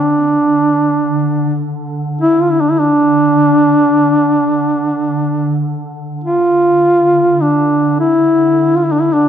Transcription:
0.00 6.79 D3 medium
0.00 1.65 D4 medium
2.21 2.43 E4 medium
2.42 2.52 F4 medium
2.51 2.62 E4 medium
2.60 2.72 D4 medium
2.71 2.81 E4 medium
2.79 5.62 D4 loud
6.24 7.43 F4 loud
6.80 9.29 D3 soft
7.41 7.97 D4 medium
8.00 8.77 E4 medium
8.76 8.85 F4 medium
8.84 8.93 E4 medium
8.92 9.03 D4 medium
9.01 9.14 E4 medium
9.13 9.29 D4 medium

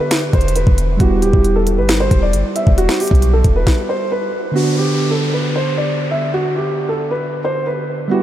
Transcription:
0.00 0.94 D3 medium
0.00 0.95 B3 medium
0.00 0.96 D4 medium
0.00 0.31 B4 medium
0.11 finger snap loud
0.11 snare loud
0.11 closed hi-hat medium
0.33 0.65 E1 loud
0.33 0.54 C5 medium
0.33 kick loud
0.33 closed hi-hat soft
0.41 closed hi-hat medium
0.48 closed hi-hat medium
0.56 0.98 B4 medium
0.56 closed hi-hat medium
0.67 0.99 E1 loud
0.67 kick loud
0.78 closed hi-hat medium
0.97 1.24 E1 loud
0.97 4.28 G3 medium
0.97 4.29 B3 medium
0.97 1.21 F#4 medium
0.97 kick loud
0.97 closed hi-hat medium
1.01 4.30 E4 medium
1.01 4.31 G4 medium
1.22 1.33 D1 loud
1.22 1.54 G4 medium
1.22 closed hi-hat medium
1.33 1.79 E1 loud
1.33 kick medium
1.45 closed hi-hat medium
1.56 1.76 A4 medium
1.67 closed hi-hat medium
1.78 2.10 G1 loud
1.78 1.99 B4 medium
1.89 finger snap loud
1.89 snare loud
1.89 closed hi-hat medium
2.00 2.21 C5 medium
2.11 2.35 E1 loud
2.11 kick loud
2.11 closed hi-hat medium
2.22 2.54 D5 medium
2.33 2.44 G1 loud
2.33 closed hi-hat medium
2.56 2.77 E5 medium
2.56 closed hi-hat medium
2.67 2.88 E1 loud
2.67 kick medium
2.78 2.99 F#4 medium
2.78 closed hi-hat medium
2.89 finger snap medium
2.89 snare loud
3.00 3.31 G4 medium
3.00 closed hi-hat medium
3.00 open hi-hat medium
3.08 3.43 B1 loud
3.08 kick medium
3.08 closed hi-hat medium
3.15 closed hi-hat medium
3.22 closed hi-hat medium
3.33 3.54 A4 medium
3.44 3.66 E1 loud
3.44 kick loud
3.44 closed hi-hat medium
3.56 3.87 B4 medium
3.67 kick loud
3.67 snare medium
3.89 4.10 C5 medium
4.12 4.53 B4 medium
4.52 8.05 D3 medium
4.52 8.06 B3 medium
4.52 4.76 F#4 loud
4.52 downlifter medium
4.56 8.07 D4 medium
4.78 5.09 G4 medium
5.11 5.32 A4 medium
5.33 5.54 B4 medium
5.55 5.76 C5 medium
5.78 6.09 D5 medium
6.11 6.32 E5 medium
6.34 6.54 F#4 medium
6.56 6.87 G4 medium
6.89 7.10 A4 medium
7.11 7.42 B4 medium
7.44 7.65 C5 medium
7.67 8.09 B4 medium
8.08 8.23 G3 medium
8.08 8.23 B3 medium
8.08 8.23 F#4 loud
8.12 8.23 E4 medium
8.12 8.23 G4 medium

